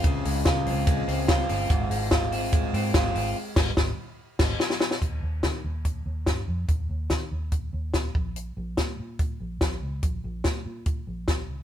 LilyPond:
<<
  \new Staff \with { instrumentName = "Clean electric guitar" } { \time 4/4 \key aes \major \tempo 4 = 144 <des aes c' f'>8 aes8 f'8 c'8 aes8 c'8 f'8 c'8 | aes,8 aes8 f'8 c'8 aes8 c'8 f'8 c'8 | r1 | r1 |
r1 | r1 | r1 | }
  \new Staff \with { instrumentName = "Fingered electric bass" } { \clef bass \time 4/4 \key aes \major des,8 des,8 des8 des,4 des,4 g,,8 | aes,,8 aes,,2 aes,8 aes,,8 aes,,8 | r8 aes,,8 aes,,8 r4 aes,,8 r4 | ees,8 ees,8 ees8 ees,4 ees,8 g,8 f,8 |
ees,8 ees,8 ees8 ees,4 ees,4 bes,,8~ | bes,,8 bes,,8 bes,8 bes,4 bes,,8 bes,,8 des,8 | bes,,8 bes,,8 bes,8 bes,4 bes,,4 des,8 | }
  \new DrumStaff \with { instrumentName = "Drums" } \drummode { \time 4/4 <hhp bd cymr>8 hho8 <hhp bd cymr sn>8 hho8 <hhp bd cymr>8 hho8 <hhp bd cymr sn>8 hho8 | <hhp bd cymr>8 hho8 <hhp bd cymr sn>8 hho8 <hhp bd cymr>8 hho8 <hhp bd cymr sn>8 hho8 | r8 <cymc bd sn>8 <bd sn>4 r8 <cymc bd sn>8 sn16 sn16 sn16 sn16 | <hh bd>4 <hh bd sn>4 <hh bd>4 <hh bd sn>4 |
<hh bd>4 <hh bd sn>4 <hh bd>4 <hh bd sn>8 bd8 | hh4 <hh bd sn>4 <hh bd>4 <hh bd sn>4 | <hh bd>4 <hh bd sn>4 <hh bd>4 <hh bd sn>4 | }
>>